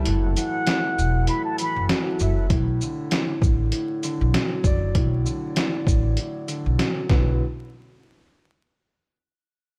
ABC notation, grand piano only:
X:1
M:4/4
L:1/8
Q:"Swing 16ths" 1/4=98
K:Bm
V:1 name="Grand piano" clef=bass
A,, E, A,,2 A,, E, F, e | A,, D, A,,2 A,, D, F, d | A,, D, A,,2 A,, D, F, [A,,D,F,B,] | z8 |]